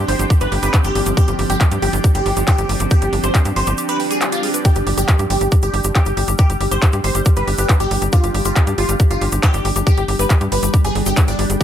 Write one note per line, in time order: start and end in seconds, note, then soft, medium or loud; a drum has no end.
0.00 4.66 F3 medium
0.00 4.67 C4 medium
0.00 11.63 D4 medium
0.00 11.63 G4 medium
0.00 11.63 G5 medium
0.08 0.16 G1 loud
0.08 0.14 G4 loud
0.08 0.24 C5 loud
0.08 open hi-hat loud
0.19 0.27 G1 medium
0.19 0.25 G4 loud
0.19 closed hi-hat medium
0.19 shaker medium
0.30 0.36 G4 loud
0.30 kick loud
0.30 closed hi-hat medium
0.30 shaker medium
0.41 0.48 G1 medium
0.41 0.47 G4 loud
0.41 0.52 B4 medium
0.41 closed hi-hat medium
0.41 shaker soft
0.52 0.59 G1 loud
0.52 0.58 G4 loud
0.52 open hi-hat loud
0.63 0.70 G1 loud
0.63 0.69 G4 loud
0.63 0.73 B4 medium
0.63 closed hi-hat medium
0.63 shaker medium
0.74 0.80 G4 loud
0.74 kick loud
0.74 clap loud
0.74 closed hi-hat medium
0.74 shaker medium
0.84 0.92 G1 medium
0.84 1.00 G4 medium
0.84 0.91 G4 loud
0.84 closed hi-hat medium
0.84 shaker soft
0.95 1.03 G1 loud
0.95 1.01 G4 loud
0.95 open hi-hat loud
1.06 1.14 G1 loud
1.06 1.12 G4 medium
1.06 closed hi-hat medium
1.06 shaker medium
1.17 1.33 G4 loud
1.17 1.23 G4 loud
1.17 kick loud
1.17 closed hi-hat medium
1.17 shaker medium
1.28 1.35 G1 medium
1.28 1.34 G4 loud
1.28 closed hi-hat medium
1.28 shaker soft
1.39 1.46 G1 loud
1.39 1.45 G4 loud
1.39 open hi-hat loud
1.50 1.57 G1 medium
1.50 1.56 G4 loud
1.50 1.66 G4 loud
1.50 closed hi-hat medium
1.50 shaker medium
1.61 1.67 G4 loud
1.61 kick loud
1.61 clap loud
1.61 closed hi-hat medium
1.61 shaker medium
1.71 1.79 G2 medium
1.71 1.77 G4 loud
1.71 closed hi-hat medium
1.71 shaker soft
1.82 1.90 G1 loud
1.82 1.98 G4 medium
1.82 1.88 G4 loud
1.82 open hi-hat loud
1.93 2.01 G1 loud
1.93 1.99 G4 loud
1.93 closed hi-hat medium
1.93 shaker medium
2.04 2.10 G4 loud
2.04 kick loud
2.04 closed hi-hat medium
2.04 shaker medium
2.14 2.22 G1 medium
2.14 2.21 G4 loud
2.14 2.31 G4 loud
2.14 closed hi-hat medium
2.14 shaker soft
2.26 2.33 G1 loud
2.26 2.32 G4 loud
2.26 open hi-hat loud
2.37 2.44 G1 medium
2.37 2.43 G4 loud
2.37 closed hi-hat medium
2.37 shaker medium
2.47 2.54 G4 loud
2.47 2.69 G4 loud
2.47 kick loud
2.47 clap loud
2.47 closed hi-hat medium
2.47 shaker medium
2.58 2.66 G1 medium
2.58 2.64 G4 loud
2.58 closed hi-hat medium
2.58 shaker soft
2.69 2.77 G1 loud
2.69 2.75 G4 loud
2.69 open hi-hat loud
2.80 2.88 G1 loud
2.80 2.86 G4 medium
2.80 closed hi-hat medium
2.80 shaker medium
2.90 2.97 G4 loud
2.90 3.07 G4 loud
2.90 kick loud
2.90 closed hi-hat medium
2.90 shaker medium
3.02 3.09 G1 medium
3.02 3.08 G4 loud
3.02 closed hi-hat medium
3.02 shaker soft
3.13 3.20 G1 loud
3.13 3.19 G4 loud
3.13 open hi-hat loud
3.23 3.31 G1 loud
3.23 3.30 G4 loud
3.23 3.40 C5 medium
3.23 closed hi-hat medium
3.23 shaker medium
3.35 3.41 G4 loud
3.35 kick loud
3.35 clap loud
3.35 closed hi-hat medium
3.35 shaker medium
3.45 3.53 G2 medium
3.45 3.51 G4 loud
3.45 closed hi-hat medium
3.45 shaker soft
3.56 3.64 G1 loud
3.56 3.62 G4 loud
3.56 3.72 C5 loud
3.56 open hi-hat loud
3.67 3.75 G1 loud
3.67 3.73 G4 loud
3.67 closed hi-hat medium
3.67 shaker medium
3.78 3.84 G4 loud
3.78 closed hi-hat medium
3.78 swell medium
3.78 shaker medium
3.88 3.95 G4 loud
3.88 4.00 B4 medium
3.88 closed hi-hat medium
3.88 shaker soft
4.00 4.09 G5 medium
4.00 open hi-hat loud
4.11 4.20 G4 medium
4.11 4.21 G#4 medium
4.11 closed hi-hat medium
4.11 shaker medium
4.21 4.30 G4 medium
4.21 clap loud
4.21 closed hi-hat medium
4.21 shaker medium
4.32 4.48 F4 loud
4.32 4.38 G4 medium
4.32 closed hi-hat medium
4.32 shaker soft
4.43 4.49 G#4 medium
4.43 open hi-hat loud
4.54 4.58 B4 medium
4.54 closed hi-hat medium
4.54 shaker medium
4.65 11.63 G3 medium
4.65 4.81 G4 loud
4.65 4.71 G4 loud
4.65 11.63 G4 medium
4.65 kick loud
4.65 closed hi-hat medium
4.65 shaker medium
4.75 4.83 G1 medium
4.75 4.82 G4 loud
4.75 closed hi-hat medium
4.75 shaker soft
4.87 4.94 G1 loud
4.87 4.93 G4 loud
4.87 open hi-hat loud
4.98 5.05 G1 medium
4.98 5.14 G4 medium
4.98 5.04 G4 loud
4.98 closed hi-hat medium
4.98 shaker medium
5.08 5.14 G4 loud
5.08 kick loud
5.08 clap loud
5.08 closed hi-hat medium
5.08 shaker medium
5.19 5.27 G2 medium
5.19 5.25 G4 loud
5.19 closed hi-hat medium
5.19 shaker soft
5.30 5.38 G1 loud
5.30 5.46 G4 loud
5.30 5.36 G4 loud
5.30 open hi-hat loud
5.41 5.48 G1 loud
5.41 5.47 G4 loud
5.41 closed hi-hat medium
5.41 shaker medium
5.52 5.58 G4 loud
5.52 kick loud
5.52 closed hi-hat medium
5.52 shaker medium
5.62 5.70 G1 medium
5.62 5.79 G4 medium
5.62 5.69 G4 loud
5.62 closed hi-hat medium
5.62 shaker soft
5.74 5.81 G1 loud
5.74 5.80 G4 loud
5.74 open hi-hat loud
5.84 5.92 G1 medium
5.84 5.91 G4 loud
5.84 closed hi-hat medium
5.84 shaker medium
5.95 6.17 G4 loud
5.95 6.01 G4 loud
5.95 kick loud
5.95 clap loud
5.95 closed hi-hat medium
5.95 shaker medium
6.05 6.14 G1 medium
6.05 6.12 G4 loud
6.05 closed hi-hat medium
6.05 shaker soft
6.17 6.25 G1 loud
6.17 6.23 G4 loud
6.17 open hi-hat loud
6.28 6.35 G1 loud
6.28 6.34 G4 medium
6.28 closed hi-hat medium
6.28 shaker medium
6.38 6.55 G4 medium
6.38 6.45 G4 loud
6.38 kick loud
6.38 closed hi-hat medium
6.38 shaker medium
6.50 6.57 G1 medium
6.50 6.56 G4 loud
6.50 closed hi-hat medium
6.50 shaker soft
6.61 6.68 G1 medium
6.61 6.67 G4 loud
6.61 open hi-hat loud
6.71 6.79 G1 medium
6.71 6.77 G4 loud
6.71 6.87 C5 medium
6.71 closed hi-hat medium
6.71 shaker medium
6.82 6.88 G4 loud
6.82 kick loud
6.82 clap loud
6.82 closed hi-hat medium
6.82 shaker medium
6.93 7.01 G2 medium
6.93 6.99 G4 loud
6.93 closed hi-hat medium
6.93 shaker soft
7.04 7.11 G1 loud
7.04 7.10 G4 loud
7.04 7.20 C5 loud
7.04 open hi-hat loud
7.15 7.22 G1 medium
7.15 7.21 G4 loud
7.15 closed hi-hat medium
7.15 shaker medium
7.25 7.32 G4 loud
7.25 kick loud
7.25 closed hi-hat medium
7.25 shaker medium
7.36 7.44 G1 medium
7.36 7.43 G4 loud
7.36 7.47 B4 medium
7.36 closed hi-hat medium
7.36 shaker soft
7.48 7.55 G1 loud
7.48 7.54 G4 loud
7.48 open hi-hat loud
7.58 7.66 G1 medium
7.58 7.64 G4 loud
7.58 7.69 B4 medium
7.58 closed hi-hat medium
7.58 shaker medium
7.69 7.75 G4 loud
7.69 kick loud
7.69 clap loud
7.69 closed hi-hat medium
7.69 shaker medium
7.80 7.88 G1 medium
7.80 7.96 G4 medium
7.80 7.86 G4 loud
7.80 closed hi-hat medium
7.80 shaker soft
7.91 7.98 G1 loud
7.91 7.97 G4 loud
7.91 open hi-hat loud
8.02 8.09 G1 loud
8.02 8.08 G4 loud
8.02 closed hi-hat medium
8.02 shaker medium
8.12 8.29 F4 loud
8.12 8.19 G4 loud
8.12 kick loud
8.12 closed hi-hat medium
8.12 shaker medium
8.24 8.31 G1 medium
8.24 8.30 G4 loud
8.24 closed hi-hat medium
8.24 shaker soft
8.34 8.42 G1 loud
8.34 8.41 G4 loud
8.34 open hi-hat loud
8.45 8.53 G1 medium
8.45 8.61 F4 medium
8.45 8.51 G4 loud
8.45 closed hi-hat medium
8.45 shaker medium
8.56 8.62 G4 loud
8.56 kick loud
8.56 clap loud
8.56 closed hi-hat medium
8.56 shaker medium
8.67 8.75 G2 medium
8.67 8.73 G4 loud
8.67 closed hi-hat medium
8.67 shaker soft
8.78 8.85 G1 loud
8.78 8.94 F4 loud
8.78 8.84 G4 loud
8.78 open hi-hat loud
8.89 8.96 G1 loud
8.89 8.95 G4 loud
8.89 closed hi-hat medium
8.89 shaker medium
9.00 9.06 G4 loud
9.00 kick loud
9.00 closed hi-hat medium
9.00 shaker medium
9.11 9.18 G1 medium
9.11 9.27 F4 medium
9.11 9.17 G4 loud
9.11 closed hi-hat medium
9.11 shaker soft
9.21 9.29 G1 loud
9.21 9.27 G4 loud
9.21 open hi-hat loud
9.32 9.40 G1 medium
9.32 9.38 G4 loud
9.32 closed hi-hat medium
9.32 shaker medium
9.43 9.64 G4 loud
9.43 9.49 G4 loud
9.43 kick loud
9.43 clap loud
9.43 closed hi-hat medium
9.43 shaker medium
9.54 9.61 G1 medium
9.54 9.60 G4 loud
9.54 closed hi-hat medium
9.54 shaker soft
9.65 9.72 G1 loud
9.65 9.71 G4 loud
9.65 open hi-hat loud
9.76 9.83 G1 loud
9.76 9.82 G4 loud
9.76 closed hi-hat medium
9.76 shaker medium
9.87 9.93 G4 loud
9.87 10.03 G4 loud
9.87 kick loud
9.87 closed hi-hat medium
9.87 shaker medium
9.98 10.05 G1 medium
9.98 10.04 G4 loud
9.98 closed hi-hat medium
9.98 shaker soft
10.08 10.16 G1 loud
10.08 10.14 G4 loud
10.08 open hi-hat loud
10.19 10.27 G1 medium
10.19 10.25 G4 loud
10.19 10.35 B4 medium
10.19 closed hi-hat medium
10.19 shaker medium
10.30 10.36 G4 loud
10.30 kick loud
10.30 clap loud
10.30 closed hi-hat medium
10.30 shaker medium
10.41 10.48 G2 medium
10.41 10.47 G4 loud
10.41 closed hi-hat medium
10.41 shaker soft
10.52 10.59 G1 loud
10.52 10.58 G4 loud
10.52 10.68 B4 loud
10.52 open hi-hat loud
10.63 10.70 G1 loud
10.63 10.69 G4 loud
10.63 closed hi-hat medium
10.63 shaker medium
10.74 10.80 G4 loud
10.74 kick loud
10.74 closed hi-hat medium
10.74 shaker medium
10.85 10.92 G1 medium
10.85 10.91 G4 loud
10.85 10.95 G#4 medium
10.85 closed hi-hat medium
10.85 shaker soft
10.95 11.03 G1 loud
10.95 11.04 G#4 medium
10.95 open hi-hat loud
11.06 11.14 G1 medium
11.06 11.17 G4 medium
11.06 11.10 G#4 medium
11.06 closed hi-hat medium
11.06 shaker medium
11.17 11.21 G#4 medium
11.17 kick loud
11.17 clap loud
11.17 closed hi-hat medium
11.17 shaker medium
11.28 11.35 G1 medium
11.28 11.44 D4 medium
11.28 11.37 G5 loud
11.28 closed hi-hat medium
11.28 shaker soft
11.39 11.46 G1 loud
11.39 11.42 G4 loud
11.39 open hi-hat loud
11.50 11.57 G1 loud
11.50 11.56 G#4 medium
11.50 closed hi-hat medium
11.50 shaker medium